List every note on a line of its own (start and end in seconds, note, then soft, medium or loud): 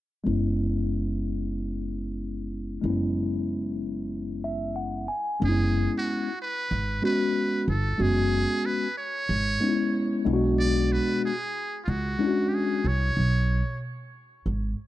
0.24 2.80 F#1 medium
0.24 2.79 G#3 medium
0.24 2.79 B3 medium
0.24 2.80 C#4 medium
0.24 2.81 E4 medium
2.81 5.05 F#1 medium
2.81 5.04 G#3 medium
2.81 2.92 A#3 medium
2.81 5.06 C#4 medium
2.81 5.06 E4 medium
2.89 5.08 B3 medium
4.44 4.75 E5 medium
4.76 5.06 F#5 medium
5.08 5.39 G#5 medium
5.40 5.86 F#1 loud
5.40 6.28 G#3 medium
5.40 6.28 B3 medium
5.40 6.28 C#4 medium
5.40 5.50 D4 medium
5.45 5.92 G#4 loud
5.49 6.32 E4 medium
5.98 6.37 F#4 medium
6.42 7.01 B4 medium
6.71 6.98 G#1 medium
7.02 7.65 G#3 medium
7.02 7.66 B3 medium
7.02 7.66 C#4 medium
7.02 7.66 F#4 medium
7.02 7.65 B4 medium
7.68 7.95 G1 medium
7.68 8.03 A4 medium
7.98 8.44 F#1 medium
7.98 8.86 G#3 medium
7.98 8.86 B3 medium
7.98 8.86 C#4 medium
7.98 8.87 F#4 medium
7.98 8.67 G#4 loud
8.66 8.97 B4 medium
8.98 10.22 C#5 loud
9.29 9.56 G#1 medium
9.60 10.24 G#3 medium
9.60 10.24 B3 medium
9.60 10.24 C#4 medium
9.60 9.70 D#4 medium
9.69 10.26 E4 medium
10.25 10.97 B1 medium
10.25 11.30 G#3 medium
10.25 11.31 B3 medium
10.25 11.31 D4 medium
10.25 10.34 E4 medium
10.33 11.34 F#4 loud
10.60 10.94 D5 loud
10.92 11.23 B4 loud
11.25 11.79 G#4 medium
11.84 12.14 C#2 medium
11.84 11.91 F4 medium
11.89 12.50 F#4 medium
12.19 12.82 G#3 medium
12.19 12.82 C#4 medium
12.19 12.83 D4 medium
12.19 12.28 E4 medium
12.27 12.86 F#4 medium
12.49 12.56 G4 medium
12.54 12.89 G#4 medium
12.84 13.11 C2 medium
12.84 13.82 C#5 medium
13.17 13.60 B1 medium
14.46 14.72 G#1 medium